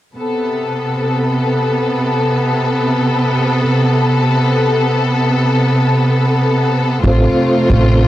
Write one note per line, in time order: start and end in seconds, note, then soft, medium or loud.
0.18 7.00 C3 medium
0.18 7.00 B3 medium
0.18 7.00 A4 medium
7.03 7.24 A1 medium
7.03 8.08 C3 medium
7.03 8.08 A3 medium
7.03 8.08 C4 medium
7.03 8.08 F4 medium
7.03 8.08 A4 medium
7.03 8.08 C5 medium
7.70 8.07 A1 medium